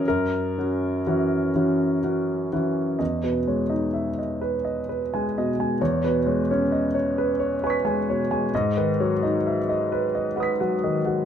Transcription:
<<
  \new Staff \with { instrumentName = "Grand piano" } { \time 6/8 \key e \lydian \tempo 4. = 43 << { ais'2~ ais'8 r8 | r2. | r2 <gis'' cis''' b'''>4 | r2 <fis'' dis''' b'''>4 | } \\ { r2. | dis''16 b'16 cis''16 dis''16 e''16 dis''16 b'16 dis''16 b'16 gis''16 dis''16 gis''16 | cis''16 b'16 cis''16 cis''16 dis''16 cis''16 b'16 cis''16 b'16 gis''16 cis''16 gis''16 | dis''16 b'16 cis''16 dis''16 e''16 dis''16 b'16 dis''16 b'16 fis''16 dis''16 fis''16 | } >> }
  \new Staff \with { instrumentName = "Grand piano" } { \clef bass \time 6/8 \key e \lydian fis,8 <cis' fis'>8 <e cis' fis'>8 <e cis' fis'>8 <cis' fis'>8 <e cis' fis'>8 | e,16 b,16 gis16 dis'8 r4 gis16 b,16 gis16 | e,16 b,16 gis16 cis'8 r4 gis16 b,16 gis16 | gis,16 dis16 fis16 dis'8 r4 fis16 dis16 fis16 | }
>>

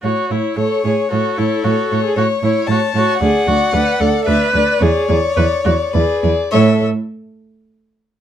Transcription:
<<
  \new Staff \with { instrumentName = "Violin" } { \time 3/4 \key a \major \tempo 4 = 111 cis''8 cis''8 cis''8 cis''8 cis''8 cis''8 | cis''8 cis''8 cis''8 cis''8 cis''8 cis''8 | d''8 d''8 d''8 d''8 d''8 d''8 | d''8 d''8 d''8 d''8 d''8 d''8 |
e''8 r2 r8 | }
  \new Staff \with { instrumentName = "Violin" } { \time 3/4 \key a \major r4 cis''4 a'4~ | a'4 cis''4 a''4 | fis''2 e''8 d''8 | cis''2 b'8 r8 |
cis''8 r2 r8 | }
  \new Staff \with { instrumentName = "Viola" } { \time 3/4 \key a \major fis'8 e'8 a'8 gis'8 fis'8 e'8 | fis'8. gis'16 fis'8 e'8 fis'8 fis'8 | gis'8 fis'8 b'8 a'8 b'4 | gis'8 gis'8 b'8 fis'8 gis'4 |
a'8 r2 r8 | }
  \new Staff \with { instrumentName = "Cello" } { \clef bass \time 3/4 \key a \major a,8 a,8 a,8 a,8 a,8 a,8 | a,8 a,8 a,8 a,8 a,8 a,8 | d,8 d,8 d,8 d,8 d,8 d,8 | e,8 e,8 e,8 e,8 e,8 e,8 |
a,8 r2 r8 | }
>>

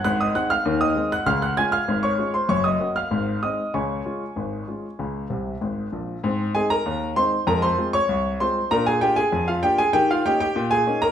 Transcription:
<<
  \new Staff \with { instrumentName = "Grand piano" } { \time 2/4 \key des \major \tempo 4 = 97 <ges'' ges'''>16 <ees'' ees'''>16 <ges'' ges'''>16 <f'' f'''>8 <ees'' ees'''>8 <ges'' ges'''>16 | <f'' f'''>16 <ges'' ges'''>16 <aes'' aes'''>16 <f'' f'''>8 <des'' des'''>8 <c'' c'''>16 | <des'' des'''>16 <ees'' ees'''>8 <f'' f'''>8. <ees'' ees'''>8 | <des'' aes'' des'''>2~ |
<des'' aes'' des'''>4 r4 | \key aes \major r8 <aes' aes''>16 <bes' bes''>8. <c'' c'''>8 | <bes' bes''>16 <c'' c'''>8 <des'' des'''>8. <c'' c'''>8 | <bes' bes''>16 <aes' aes''>16 <g' g''>16 <aes' aes''>8 <f' f''>16 <g' g''>16 <aes' aes''>16 |
<g' g''>16 <f' f''>16 <g' g''>16 <g' g''>8 <aes' aes''>8 <bes' bes''>16 | }
  \new Staff \with { instrumentName = "Grand piano" } { \clef bass \time 2/4 \key des \major <aes,, aes,>8 <aes c' ees'>8 <ees, ees>8 <aes c' ees'>8 | <des, des>8 <aes des' f'>8 <aes,, aes,>8 <aes des' f'>8 | <ges,, ges,>8 <bes des' ges'>8 <aes,, aes,>8 <aes c' ees'>8 | <des, des>8 <aes des' f'>8 <aes,, aes,>8 <aes des' f'>8 |
<des, des>8 <c, c>8 <aes,, aes,>8 <bes,, bes,>8 | \key aes \major <aes, c'>8 <aes c' ees'>8 ees,8 <aes c' ees'>8 | <f, aes>8 <aes c' f'>8 c,8 <aes c' f'>8 | <bes, d'>8 <bes d' f'>8 f,8 <bes d' f'>8 |
ees8 <bes des' ees'>8 bes,8 <bes des' ees'>8 | }
>>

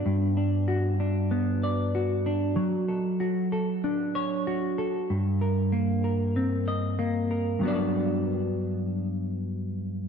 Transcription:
\new Staff \with { instrumentName = "Clean electric guitar" } { \time 4/4 \key d \major \tempo 4 = 95 <g, b d' fis' d''>8 d'8 fis'8 d'8 b8 d''8 fis'8 d'8 | fis8 a'8 fis'8 a'8 d'8 cis''8 fis'8 a'8 | g,8 bes'8 bes8 bes'8 c'8 ees''8 bes8 bes'8 | <g, fis b d' fis' d''>1 | }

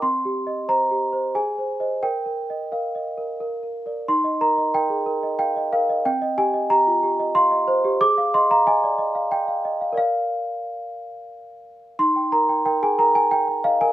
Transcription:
\new Staff \with { instrumentName = "Celesta" } { \time 3/4 \key ees \major \tempo 4 = 91 << { c'''4 bes''4 aes''4 | g''4 f''4. r8 | c'''8 bes''8 g''4 g''8 f''8 | g''8 aes''8 bes''4 c'''4 |
d'''8 c'''16 bes''16 aes''4 g''4 | f''2~ f''8 r8 | c'''8 bes''8 g''16 aes''16 bes''16 aes''16 g''8 f''16 aes''16 | } \\ { \tuplet 3/2 { c'8 g'8 ees''8 c''8 g'8 c''8 aes'8 c''8 <c'' ees''>8 } | \tuplet 3/2 { bes'8 bes'8 ees''8 bes'8 ees''8 bes'8 bes'8 bes'8 <bes' d''>8 } | ees'16 ees''16 bes'16 ees''16 bes'16 aes'16 bes'16 ees''16 f''16 ees''16 bes'16 ees''16 | c'16 ees''16 g'16 ees''16 g'16 f'16 g'16 ees''16 f''16 ees''16 c''16 g'16 |
aes'16 f''16 ees''16 f''16 ees''16 d''16 ees''16 f''8 f''16 ees''16 f''16 | <bes' d''>2. | ees'16 g''16 bes'16 g''16 bes'16 aes'16 bes'16 g''16 aes''16 g''16 ees''16 bes'16 | } >> }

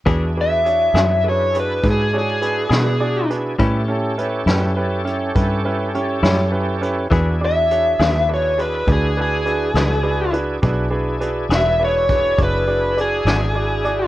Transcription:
<<
  \new Staff \with { instrumentName = "Lead electric guitar" } { \time 12/8 \key e \mixolydian \tempo 4. = 68 r8 e''4. cis''8 b'8 gis'8 gis'2 r8 | r1. | r8 e''4. cis''8 b'8 gis'8 gis'2 r8 | r4. e''8 cis''4 b'4 gis'2 | }
  \new Staff \with { instrumentName = "Upright piano" } { \time 12/8 \key e \mixolydian <d' fis' gis' b'>8 <d' fis' gis' b'>8 <d' fis' gis' cis''>8 <d' fis' gis' cis''>8 <d' fis' gis' b'>8 <d' fis' gis' b'>8 <d' fis' gis' b'>8 <d' fis' gis' cis''>8 <d' fis' gis' b'>8 <d' fis' gis' b'>8 <d' fis' gis' d''>8 <d' fis' gis' b'>8 | <cis' e' g' b'>8 <cis' e' g' a'>8 <cis' e' g' b'>8 <cis' e' g' b'>8 <cis' e' g' b'>8 <cis' e' g' cis''>8 <cis' e' g' b'>8 <cis' e' g' b'>8 <cis' e' g' cis''>8 <cis' e' g' cis''>8 <cis' e' g' b'>8 <cis' e' g' b'>8 | <d' fis' gis' b'>8 <d' fis' gis' d''>8 <d' fis' gis' cis''>8 <d' fis' gis' b'>8 <d' fis' gis' b'>8 <d' fis' gis' b'>8 <d' fis' gis' b'>8 <d' fis' gis' b'>8 <d' fis' gis' b'>8 <d' fis' gis' b'>8 <d' fis' gis' b'>8 <d' fis' gis' b'>8 | <d' fis' gis' b'>8 <d' fis' gis' b'>8 <d' fis' gis' b'>8 <d' fis' gis' b'>8 <d' fis' gis' b'>8 <d' fis' gis' b'>8 <d' fis' gis' d''>8 <d' fis' gis' d''>8 <d' fis' gis' d''>8 <d' fis' gis' d''>8 <d' fis' gis' d''>8 <d' fis' gis' d''>8 | }
  \new Staff \with { instrumentName = "Tonewheel organ" } { \time 12/8 \key e \mixolydian <d' e' gis'>1. | <cis' g' a'>1. | <d' e' gis'>1. | <d' e' gis'>1. | }
  \new Staff \with { instrumentName = "Clean electric guitar" } { \time 12/8 \key e \mixolydian <e b d' gis'>8 r4 <e b d' gis'>8 r2 r8 <e b d' gis'>8 r4 | <a, g cis' e'>8 r4 <a, g cis' e'>8 r2 r8 <a, g cis' e'>8 r4 | <e b d' gis'>8 r4 <e b d' gis'>8 r2 r8 <e b d' gis'>8 r4 | r4. <e b d' gis'>8 r2 r8 <e b d' gis'>8 r4 | }
  \new Staff \with { instrumentName = "Fingered electric bass" } { \clef bass \time 12/8 \key e \mixolydian e,4. fis,4. gis,4. b,4. | a,4. fis,4. g,4. fis,4. | e,4. dis,4. d,4. cis,4. | b,,4. e,,4. fis,,4. gis,,4. | }
  \new DrumStaff \with { instrumentName = "Drums" } \drummode { \time 12/8 <hh bd>4 hh8 <hh sn>4 hh8 <hh bd>4 hh8 <hh sn>4 hh8 | <hh bd>4 hh8 <hh sn>4 hh8 <hh bd>4 hh8 <hh sn>4 hh8 | <hh bd>4 hh8 <hh sn>4 hh8 <hh bd>4 hh8 <hh sn>4 hh8 | <hh bd>4 hh8 <hh sn>4 <hh bd>8 <hh bd>4 hh8 <hh sn>4 hh8 | }
>>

